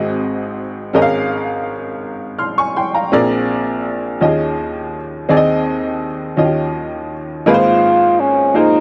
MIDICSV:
0, 0, Header, 1, 3, 480
1, 0, Start_track
1, 0, Key_signature, -4, "major"
1, 0, Tempo, 724638
1, 623, Time_signature, 6, 3, 24, 8
1, 5831, End_track
2, 0, Start_track
2, 0, Title_t, "Upright piano"
2, 0, Program_c, 0, 0
2, 0, Note_on_c, 0, 32, 59
2, 0, Note_on_c, 0, 44, 59
2, 0, Note_on_c, 0, 60, 57
2, 0, Note_on_c, 0, 66, 57
2, 0, Note_on_c, 0, 68, 50
2, 0, Note_on_c, 0, 75, 60
2, 40, Control_c, 0, 64, 127
2, 398, Note_off_c, 0, 60, 0
2, 401, Note_off_c, 0, 66, 0
2, 404, Note_off_c, 0, 68, 0
2, 405, Note_off_c, 0, 75, 0
2, 595, Note_off_c, 0, 44, 0
2, 596, Note_off_c, 0, 32, 0
2, 620, Note_on_c, 0, 61, 80
2, 626, Note_on_c, 0, 68, 76
2, 627, Note_on_c, 0, 44, 64
2, 628, Note_on_c, 0, 32, 68
2, 628, Note_on_c, 0, 70, 74
2, 632, Control_c, 0, 64, 0
2, 634, Note_on_c, 0, 75, 77
2, 671, Note_off_c, 0, 75, 0
2, 675, Note_on_c, 0, 77, 96
2, 730, Control_c, 0, 64, 127
2, 1122, Note_off_c, 0, 61, 0
2, 1126, Note_off_c, 0, 68, 0
2, 1127, Note_off_c, 0, 70, 0
2, 1150, Note_off_c, 0, 77, 0
2, 1580, Note_on_c, 0, 89, 50
2, 1585, Note_on_c, 0, 84, 47
2, 1697, Note_off_c, 0, 89, 0
2, 1699, Note_off_c, 0, 84, 0
2, 1709, Note_on_c, 0, 85, 69
2, 1712, Note_on_c, 0, 80, 50
2, 1821, Note_off_c, 0, 85, 0
2, 1823, Note_off_c, 0, 80, 0
2, 1831, Note_on_c, 0, 84, 60
2, 1835, Note_on_c, 0, 79, 51
2, 1942, Note_off_c, 0, 84, 0
2, 1944, Note_off_c, 0, 79, 0
2, 1950, Note_on_c, 0, 82, 53
2, 1953, Note_on_c, 0, 77, 48
2, 2041, Note_off_c, 0, 44, 0
2, 2042, Note_off_c, 0, 32, 0
2, 2065, Note_on_c, 0, 60, 81
2, 2070, Note_on_c, 0, 34, 76
2, 2070, Note_on_c, 0, 68, 75
2, 2073, Control_c, 0, 64, 0
2, 2073, Note_on_c, 0, 46, 73
2, 2073, Note_on_c, 0, 70, 77
2, 2076, Note_on_c, 0, 74, 96
2, 2176, Note_off_c, 0, 82, 0
2, 2178, Note_off_c, 0, 77, 0
2, 2183, Control_c, 0, 64, 127
2, 2565, Note_off_c, 0, 60, 0
2, 2568, Note_off_c, 0, 68, 0
2, 2570, Note_off_c, 0, 70, 0
2, 2571, Note_off_c, 0, 74, 0
2, 2762, Note_off_c, 0, 34, 0
2, 2764, Note_off_c, 0, 46, 0
2, 2784, Note_on_c, 0, 65, 54
2, 2785, Note_on_c, 0, 61, 63
2, 2789, Note_on_c, 0, 39, 61
2, 2790, Note_on_c, 0, 51, 63
2, 2793, Note_on_c, 0, 67, 43
2, 2795, Control_c, 0, 64, 0
2, 2797, Note_on_c, 0, 75, 66
2, 2833, Note_off_c, 0, 67, 0
2, 2836, Note_on_c, 0, 68, 53
2, 2893, Control_c, 0, 64, 127
2, 3285, Note_off_c, 0, 65, 0
2, 3286, Note_off_c, 0, 61, 0
2, 3291, Note_off_c, 0, 75, 0
2, 3311, Note_off_c, 0, 68, 0
2, 3481, Note_off_c, 0, 39, 0
2, 3482, Note_off_c, 0, 51, 0
2, 3501, Note_on_c, 0, 60, 77
2, 3504, Note_on_c, 0, 51, 62
2, 3505, Note_on_c, 0, 63, 77
2, 3506, Note_on_c, 0, 39, 66
2, 3510, Note_on_c, 0, 68, 79
2, 3512, Note_on_c, 0, 74, 77
2, 3515, Control_c, 0, 64, 0
2, 3552, Note_off_c, 0, 74, 0
2, 3555, Note_on_c, 0, 75, 84
2, 3650, Control_c, 0, 64, 127
2, 4003, Note_off_c, 0, 60, 0
2, 4005, Note_off_c, 0, 63, 0
2, 4008, Note_off_c, 0, 68, 0
2, 4030, Note_off_c, 0, 75, 0
2, 4199, Note_off_c, 0, 39, 0
2, 4199, Note_off_c, 0, 51, 0
2, 4216, Note_on_c, 0, 61, 62
2, 4220, Note_on_c, 0, 51, 51
2, 4220, Note_on_c, 0, 65, 56
2, 4222, Note_on_c, 0, 39, 54
2, 4224, Note_on_c, 0, 66, 41
2, 4228, Note_on_c, 0, 75, 63
2, 4235, Control_c, 0, 64, 0
2, 4267, Note_on_c, 0, 67, 56
2, 4268, Note_off_c, 0, 66, 0
2, 4347, Control_c, 0, 64, 127
2, 4720, Note_off_c, 0, 61, 0
2, 4722, Note_off_c, 0, 65, 0
2, 4726, Note_off_c, 0, 75, 0
2, 4746, Note_off_c, 0, 67, 0
2, 4916, Note_off_c, 0, 51, 0
2, 4917, Note_off_c, 0, 39, 0
2, 4942, Note_on_c, 0, 58, 79
2, 4942, Note_on_c, 0, 63, 74
2, 4946, Note_on_c, 0, 44, 65
2, 4947, Note_on_c, 0, 32, 59
2, 4948, Note_on_c, 0, 65, 77
2, 4950, Note_on_c, 0, 68, 80
2, 4951, Note_on_c, 0, 71, 75
2, 4953, Control_c, 0, 64, 0
2, 4991, Note_off_c, 0, 71, 0
2, 4994, Note_on_c, 0, 72, 97
2, 5066, Control_c, 0, 64, 127
2, 5443, Note_off_c, 0, 58, 0
2, 5443, Note_off_c, 0, 63, 0
2, 5446, Note_off_c, 0, 65, 0
2, 5447, Note_off_c, 0, 68, 0
2, 5469, Note_off_c, 0, 72, 0
2, 5660, Note_on_c, 0, 58, 62
2, 5661, Note_on_c, 0, 63, 62
2, 5664, Note_on_c, 0, 65, 57
2, 5665, Note_on_c, 0, 68, 59
2, 5669, Note_on_c, 0, 72, 62
2, 5831, Note_off_c, 0, 32, 0
2, 5831, Note_off_c, 0, 44, 0
2, 5831, Note_off_c, 0, 58, 0
2, 5831, Note_off_c, 0, 63, 0
2, 5831, Note_off_c, 0, 65, 0
2, 5831, Note_off_c, 0, 68, 0
2, 5831, Note_off_c, 0, 72, 0
2, 5831, End_track
3, 0, Start_track
3, 0, Title_t, "French horn"
3, 0, Program_c, 1, 60
3, 4960, Note_on_c, 1, 65, 93
3, 5432, Note_on_c, 1, 61, 80
3, 5442, Note_off_c, 1, 65, 0
3, 5675, Note_on_c, 1, 63, 85
3, 5685, Note_off_c, 1, 61, 0
3, 5831, Note_off_c, 1, 63, 0
3, 5831, End_track
0, 0, End_of_file